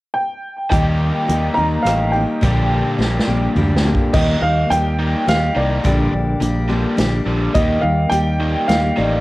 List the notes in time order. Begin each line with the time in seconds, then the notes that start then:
0.14 G5
0.70 D#2 D#3 G3 A#3 D#4 G4 G5, kick, closed hi-hat
1.28 D#2 G3 A#3 D#4 G4, closed hi-hat
1.54 D#2 D#4 G4 A#5
1.59 A#3
1.83 A1 G3 A#3 D#4 F5, closed hi-hat
1.87 G4, cross-stick
2.12 D#4 G4 G5
2.16 A#3
2.41 A#1 A#2 D3 G3 A#3 D4 G4, kick, closed hi-hat
2.45 D4 G4
2.98 A#1 G3 A#3 D4 G4, snare
3.19 snare
3.27 A#1 G3 A#3 D4 G4
3.56 D2 G3 A#3 D4 G4, mid tom
3.77 snare
3.85 G3 A#3 D4 G4
3.95 kick
4.13 D#2 D#3 G3 A#3 D#4 G4 D#5, kick, crash
4.42 D#2 D#3 G3 F5
4.70 D#2 D#3 G3 A#3 D#4 G4 G5, closed hi-hat
4.99 D#3 G3 A#3
5.26 D#2 D#3 G3 A#3 D#4 G4 F5, snare, closed hi-hat
5.55 C2 D#3 G3 A#3 D5
5.84 A#1 A#2 D3 G3 A#3 D4 G4, kick, closed hi-hat
6.13 A#1 A#2 D3
6.40 A#1 A#2 D3 G3 A#3 D4 G4, closed hi-hat
6.69 A#2 D3 G3 A#3 D4 G4
6.97 A#1 A#2 D3 G3 A#3 D4 G4, snare, closed hi-hat
7.26 A#1 A#2 D3 G3
7.54 D#2 D#3 G3 A#3 D#4 G4 D#5, kick, closed hi-hat
7.81 D#2 D#3 G3 F5
8.09 D#2 D#3 G3 A#3 D#4 G5, closed hi-hat
8.14 G4
8.40 D#3 G3 A#3
8.68 D#2 D#3 G3 A#3 D#4 G4 F5, snare, closed hi-hat
8.96 A1 D#3 G3 A#3 D#4 G4 D5